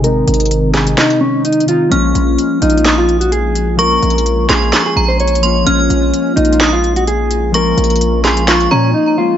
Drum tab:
HH |x-----------x--x--x--x--x-----------x-----x-----x-----x-----------------x---x---x---x-----------|x-----------x-----------x-----------x---x---x---x-----------x-----x-----x-----------x-----------|x-----------x---x---x---x-----------x-----------x-----------------------x---x---x---x-----------|x-----------x-----------x-----------x---x---x---x-----------x-----x-----x-----------x-----------|
CP |------------------------------------x-----------x-----------------------------------------------|------------------------------------------------x-----------------------------------------------|------------------------------------x-----------x-----------------------------------------------|------------------------------------------------x-----------------------------------------------|
SD |------------------------------------o-----------o-----------------------------------------------|------------------------------------------------o-----------------------------------------------|------------------------------------o-----------o-----------------------------------------------|------------------------------------------------o-----------------------------------------------|

HH |x-----------x--x--x--x--x-----------x-----x-----x-----x-----------------------------------------|
CP |------------------------------------x-----------x-----------------------------------------------|
SD |------------------------------------o-----------o-----------------------------------------------|